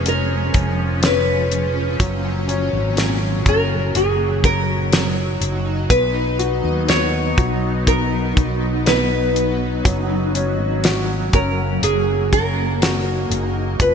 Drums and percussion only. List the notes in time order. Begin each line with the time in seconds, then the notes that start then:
0.06 closed hi-hat
0.54 kick, closed hi-hat
1.03 snare, closed hi-hat
1.51 closed hi-hat
2.00 kick, closed hi-hat
2.49 closed hi-hat
2.97 snare, closed hi-hat
3.46 kick, closed hi-hat
3.95 closed hi-hat
4.44 kick, closed hi-hat
4.93 snare, closed hi-hat
5.42 closed hi-hat
5.90 kick, closed hi-hat
6.39 closed hi-hat
6.89 snare, closed hi-hat
7.38 kick, closed hi-hat
7.87 kick, closed hi-hat
8.37 kick, closed hi-hat
8.86 snare, closed hi-hat
9.36 closed hi-hat
9.85 kick, closed hi-hat
10.35 closed hi-hat
10.84 snare, closed hi-hat
11.33 kick, closed hi-hat
11.83 closed hi-hat
12.33 kick, closed hi-hat
12.82 snare, closed hi-hat
13.31 closed hi-hat
13.80 kick, closed hi-hat